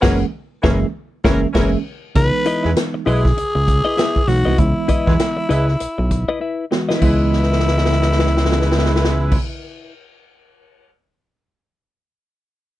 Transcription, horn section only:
0.01 0.18 E3 loud
0.01 0.18 C#4 loud
0.01 0.18 A#4 loud
0.62 0.79 E3 loud
0.62 0.79 C#4 loud
0.62 0.79 A#4 loud
1.24 1.41 E3 loud
1.24 1.41 C#4 loud
1.24 1.41 A#4 loud
1.53 1.70 E3 medium
1.53 1.70 C#4 loud
1.53 1.70 A#4 loud
2.63 2.72 G#3 medium
2.63 2.71 E4 medium
2.63 2.72 B4 medium
3.07 3.26 G#3 medium
3.07 3.26 E4 loud
3.07 3.26 B4 loud
5.07 5.15 G#3 medium
5.07 5.15 E4 medium
5.07 5.15 B4 loud
5.50 5.69 G#3 medium
5.50 5.69 E4 loud
5.50 5.69 B4 loud
7.02 9.38 G#3 medium
7.02 9.38 E4 loud
7.02 9.38 B4 loud

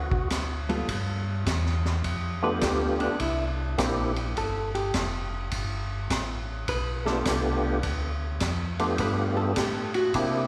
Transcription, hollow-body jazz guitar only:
0.69 0.87 G3 medium
0.69 0.87 B3 medium
0.69 0.87 F4 medium
0.69 0.87 A4 medium
2.44 2.62 B4 medium
2.63 3.00 G4 medium
3.01 3.20 D4 medium
3.21 3.44 E4 medium
4.38 4.74 A4 medium
4.75 4.93 G4 medium
6.69 7.06 B4 medium
7.06 7.18 A4 medium
9.00 9.36 B4 medium
9.37 9.56 A4 medium
9.58 9.94 G4 medium
9.95 10.14 F#4 medium
10.15 10.47 E4 medium

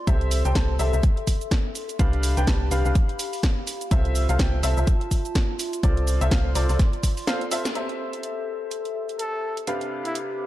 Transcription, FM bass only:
0.07 0.42 C2 loud
0.45 0.53 C2 medium
0.79 0.90 C2 medium
0.93 1.00 C2 medium
1.99 2.34 C2 medium
2.37 2.45 C2 medium
2.71 2.82 C2 medium
2.85 2.92 C2 loud
3.91 4.26 C2 medium
4.29 4.37 C2 medium
4.63 4.74 C2 medium
4.77 4.84 C2 loud
5.83 6.18 C2 loud
6.21 6.29 C2 loud
6.55 6.66 C2 loud
6.69 6.76 C2 loud

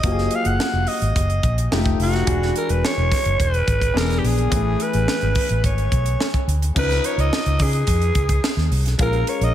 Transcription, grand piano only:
0.03 1.69 F3 medium
0.03 1.68 F#3 medium
0.03 1.68 A#3 medium
0.03 0.11 G4 medium
0.12 1.72 G#4 medium
1.71 2.27 F3 medium
1.71 1.78 G#3 medium
1.71 2.28 D#4 medium
1.71 2.28 G4 medium
1.78 2.31 A3 medium
2.26 3.91 E3 medium
2.26 3.92 G#3 medium
2.26 3.92 D4 medium
2.26 3.92 F#4 medium
3.94 4.49 E3 medium
3.94 4.51 B3 medium
3.94 4.51 D4 medium
3.94 4.51 G#4 medium
4.50 6.71 E3 medium
4.50 6.71 A3 medium
4.50 6.72 C#4 medium
4.50 6.72 G#4 medium
6.75 8.95 F3 medium
6.75 8.95 C#4 medium
6.75 8.96 D#4 medium
6.75 8.96 B4 medium
8.98 9.54 G#3 medium
8.98 9.54 C#4 medium
8.98 9.54 F4 medium
8.98 9.06 G#4 medium
9.07 9.54 A#4 medium

